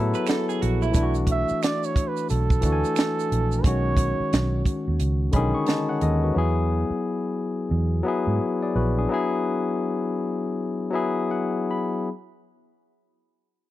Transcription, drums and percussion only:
0.14 shaker soft
0.27 finger snap medium
0.27 snare loud
0.27 closed hi-hat medium
0.27 shaker medium
0.50 shaker soft
0.62 closed hi-hat medium
0.82 shaker soft
0.94 kick loud
0.94 closed hi-hat medium
0.94 shaker medium
1.15 shaker soft
1.27 kick medium
1.27 closed hi-hat medium
1.49 shaker soft
1.63 finger snap medium
1.63 snare loud
1.63 closed hi-hat medium
1.63 shaker medium
1.84 shaker soft
1.96 kick medium
1.96 closed hi-hat medium
2.17 shaker soft
2.29 closed hi-hat medium
2.29 shaker medium
2.50 kick medium
2.50 shaker soft
2.62 kick medium
2.62 closed hi-hat medium
2.62 shaker soft
2.85 shaker soft
2.96 finger snap medium
2.96 snare loud
2.96 closed hi-hat medium
2.96 shaker medium
3.20 shaker soft
3.32 closed hi-hat medium
3.52 shaker soft
3.64 kick loud
3.64 closed hi-hat medium
3.97 kick medium
3.97 closed hi-hat medium
4.33 snare loud
4.33 closed hi-hat medium
4.65 kick medium
4.65 closed hi-hat medium
5.00 closed hi-hat medium
5.33 kick medium
5.33 closed hi-hat medium
5.66 snare loud
5.66 closed hi-hat medium
6.01 closed hi-hat medium

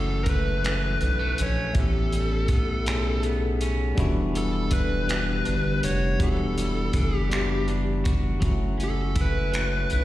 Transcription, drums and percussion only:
0.26 kick medium
0.26 closed hi-hat medium
0.64 finger snap medium
0.64 closed hi-hat medium
1.01 closed hi-hat soft
1.38 closed hi-hat medium
1.75 kick loud
1.75 closed hi-hat medium
2.12 closed hi-hat soft
2.48 kick medium
2.48 closed hi-hat medium
2.86 finger snap medium
2.86 closed hi-hat medium
3.23 closed hi-hat soft
3.61 closed hi-hat medium
3.98 kick loud
3.98 closed hi-hat medium
4.35 closed hi-hat medium
4.71 kick medium
4.71 closed hi-hat medium
5.09 finger snap medium
5.09 closed hi-hat medium
5.45 closed hi-hat soft
5.83 closed hi-hat medium
6.20 kick medium
6.20 closed hi-hat medium
6.58 closed hi-hat medium
6.93 kick medium
6.93 closed hi-hat medium
7.31 finger snap medium
7.31 closed hi-hat medium
7.68 closed hi-hat soft
8.05 kick medium
8.05 closed hi-hat medium
8.42 kick medium
8.42 closed hi-hat medium
8.80 closed hi-hat soft
9.16 kick medium
9.16 closed hi-hat medium
9.54 finger snap medium
9.54 closed hi-hat medium
9.90 closed hi-hat soft

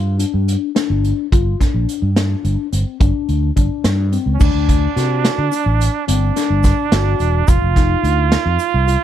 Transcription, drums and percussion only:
0.19 closed hi-hat medium
0.48 closed hi-hat medium
0.76 snare loud
0.76 closed hi-hat medium
1.04 closed hi-hat medium
1.32 kick loud
1.32 closed hi-hat medium
1.61 kick medium
1.61 snare soft
1.61 closed hi-hat medium
1.89 closed hi-hat medium
2.16 snare loud
2.16 closed hi-hat medium
2.45 closed hi-hat medium
2.73 closed hi-hat medium
3.01 kick loud
3.01 closed hi-hat medium
3.29 closed hi-hat soft
3.57 kick medium
3.57 closed hi-hat medium
3.84 snare loud
3.84 closed hi-hat medium
4.13 closed hi-hat medium
4.40 kick loud
4.40 crash medium
4.40 shaker medium
4.69 kick medium
4.69 closed hi-hat medium
4.97 snare soft
4.97 closed hi-hat medium
5.25 snare loud
5.25 closed hi-hat medium
5.52 closed hi-hat medium
5.52 shaker medium
5.80 closed hi-hat medium
5.80 shaker soft
6.08 closed hi-hat medium
6.36 snare soft
6.36 closed hi-hat medium
6.63 kick medium
6.63 snare soft
6.63 closed hi-hat medium
6.63 shaker medium
6.92 snare loud
6.92 closed hi-hat medium
7.19 closed hi-hat medium
7.19 shaker soft
7.48 kick loud
7.48 closed hi-hat medium
7.48 shaker medium
7.76 kick medium
7.76 snare soft
7.76 closed hi-hat medium
8.04 closed hi-hat medium
8.32 snare loud
8.32 closed hi-hat medium
8.59 closed hi-hat medium
8.59 shaker medium
8.87 closed hi-hat medium
8.87 shaker soft

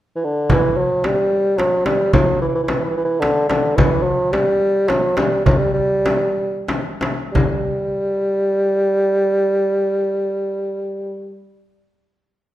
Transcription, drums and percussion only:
0.50 darbuka dum medium
0.50 frame drum medium
0.63 darbuka ka soft
0.77 darbuka ka soft
1.04 darbuka tek medium
1.04 frame drum medium
1.58 darbuka tek medium
1.58 frame drum soft
1.86 darbuka tek medium
1.86 frame drum medium
2.13 darbuka dum medium
2.13 frame drum medium
2.28 darbuka ka soft
2.68 darbuka tek medium
2.68 frame drum medium
3.22 darbuka tek medium
3.22 frame drum medium
3.50 darbuka tek medium
3.50 frame drum medium
3.78 darbuka dum medium
3.78 frame drum medium
3.92 darbuka ka soft
4.07 darbuka ka soft
4.33 darbuka tek medium
4.33 frame drum medium
4.88 darbuka tek medium
4.88 frame drum medium
5.17 darbuka tek medium
5.17 frame drum medium
5.46 darbuka dum medium
5.46 frame drum medium
5.61 darbuka ka soft
5.77 darbuka ka soft
6.06 darbuka tek medium
6.06 frame drum medium
6.38 darbuka ka soft
6.68 darbuka tek medium
6.68 frame drum medium
7.01 darbuka tek medium
7.01 frame drum medium
7.35 darbuka dum medium
7.35 frame drum medium

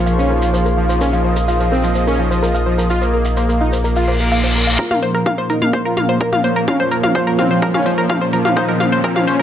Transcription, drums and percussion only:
0.07 maracas medium
0.19 maracas soft
0.42 maracas medium
0.54 maracas soft
0.66 maracas soft
0.90 maracas medium
1.01 maracas medium
1.13 maracas soft
1.36 maracas medium
1.48 maracas medium
1.60 maracas soft
1.84 maracas medium
1.95 maracas medium
2.07 maracas soft
2.31 maracas medium
2.44 maracas medium
2.55 maracas soft
2.79 maracas medium
2.90 maracas medium
3.02 maracas soft
3.25 maracas medium
3.37 maracas medium
3.49 maracas soft
3.73 maracas medium
3.85 maracas medium
3.96 maracas soft
4.20 maracas medium
4.31 maracas medium
4.44 maracas soft
4.68 maracas medium
4.79 kick loud
4.91 mid tom medium
5.02 open hi-hat loud
5.26 kick loud
5.26 mid tom medium
5.50 open hi-hat medium
5.62 mid tom medium
5.73 kick loud
5.97 open hi-hat loud
5.97 mid tom loud
6.21 kick loud
6.33 mid tom medium
6.44 open hi-hat medium
6.68 kick loud
6.68 mid tom loud
6.91 open hi-hat loud
7.03 mid tom medium
7.15 kick loud
7.39 open hi-hat medium
7.39 mid tom loud
7.62 kick loud
7.74 mid tom medium
7.86 open hi-hat loud
8.10 kick loud
8.10 mid tom medium
8.33 open hi-hat medium
8.45 mid tom loud
8.57 kick loud
8.80 open hi-hat loud
8.80 mid tom medium
9.04 kick loud
9.16 mid tom medium
9.28 open hi-hat loud

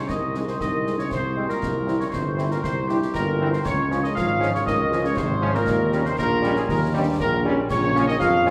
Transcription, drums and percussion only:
0.09 concert bass drum medium
0.09 snare medium
0.35 snare medium
0.48 snare medium
0.61 concert bass drum medium
0.61 snare medium
0.87 snare medium
0.99 snare medium
1.12 concert bass drum medium
1.12 snare medium
1.50 snare medium
1.63 concert bass drum medium
1.63 snare medium
1.88 snare medium
2.00 snare medium
2.13 concert bass drum medium
2.13 snare medium
2.38 snare medium
2.51 snare medium
2.64 concert bass drum medium
2.64 snare medium
2.89 snare medium
3.02 snare medium
3.15 concert bass drum medium
3.15 snare medium
3.53 snare medium
3.65 concert bass drum loud
3.65 snare medium
3.65 crash soft
3.91 snare medium
4.04 snare medium
4.17 concert bass drum medium
4.17 snare medium
4.43 snare medium
4.55 snare medium
4.67 concert bass drum medium
4.67 snare medium
4.92 snare medium
5.04 snare medium
5.17 concert bass drum medium
5.17 snare medium
5.55 snare medium
5.67 concert bass drum medium
5.67 snare medium
5.92 snare medium
6.05 snare medium
6.18 concert bass drum medium
6.18 snare medium
6.44 snare medium
6.56 snare medium
6.69 concert bass drum loud
6.69 snare medium
7.20 concert bass drum medium
7.20 snare medium
7.71 concert bass drum loud
7.71 snare medium
7.71 crash medium
7.96 snare medium
8.08 snare medium
8.21 concert bass drum medium
8.21 snare medium
8.47 snare medium

